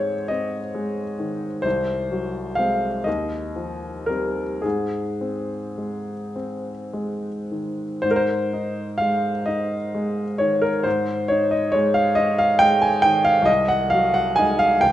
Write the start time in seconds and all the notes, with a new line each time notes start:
Already playing: G#2 G#3 C4 C5 C#5
0.28 C4 D#5
0.75 G#3
1.19 D#3
1.62 C2 C5
2.11 F#3
2.55 G#3 C4 F5
3.04 D#2 D#5
3.56 F3
4.06 G3 C4 A#4
4.62 G#2 G#4
5.21 C4
5.78 G#3
6.36 C4
6.93 G#3
7.51 D#3
8.02 G#2 C5
8.11 A#4
8.16 C5
8.53 D#4
8.98 G#3 F5
9.46 D#4 D#5
9.95 G#3
10.38 D#3 C#5
10.62 A#4
10.84 G#2 C5
11.28 D#4 C#5
11.51 D#5
11.72 G#3 C#5
11.94 F5
12.15 D#4 D#5
12.39 F5
12.59 G#3 G5
12.82 G#5
13.02 D#3 G5
13.25 F5
13.42 C2 D#5
13.68 F#5
13.90 F#3 F5
14.14 F#5
14.36 G#3 D#4 G#5
14.59 F5
14.81 C#2 G5